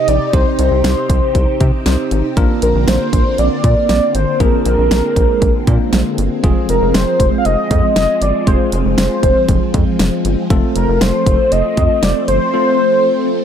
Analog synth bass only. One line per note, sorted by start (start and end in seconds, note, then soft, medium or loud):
0.08 0.19 A#1 medium
0.33 0.45 C2 loud
0.59 0.70 C2 loud
0.72 0.83 C2 medium
0.84 0.95 C2 medium
1.09 1.21 C2 loud
1.35 1.46 C2 loud
1.61 1.72 C3 medium
1.86 1.97 C2 loud
2.12 2.23 G#1 medium
2.37 2.48 A#1 loud
2.62 2.73 A#1 loud
2.75 2.86 A#1 medium
2.88 2.99 A#1 medium
3.13 3.24 A#1 medium
3.39 3.50 A#1 loud
3.64 3.75 A#2 loud
3.89 4.00 A#1 loud
4.15 4.26 G#1 medium
4.40 4.51 A#1 loud
4.66 4.77 A#1 loud
4.78 4.89 A#1 medium
4.91 5.02 A#1 loud
5.16 5.27 A#1 loud
5.42 5.53 A#1 medium
5.67 5.78 A#2 loud
5.93 6.04 A#1 loud
6.18 6.29 G1 loud
6.44 6.55 F1 loud
6.69 6.80 F1 loud
6.82 6.93 F1 medium
6.94 7.06 F1 loud
7.20 7.31 F1 loud
7.45 7.56 F1 loud
7.71 7.82 F2 loud
7.96 8.07 F1 loud
8.22 8.33 G1 medium
8.47 8.58 F1 loud
8.72 8.83 F1 loud
8.85 8.96 F1 medium
8.98 9.09 F1 loud
9.23 9.34 F1 loud
9.49 9.60 F1 loud
9.74 9.85 F2 loud
9.99 10.11 F1 loud
10.25 10.36 G1 medium
10.50 10.61 F1 loud
10.76 10.87 F1 loud
10.88 11.00 F1 loud
11.01 11.12 F1 loud
11.26 11.38 F1 loud
11.52 11.63 F1 loud
11.78 11.89 F2 medium
12.03 12.14 F1 loud
12.28 12.39 G1 medium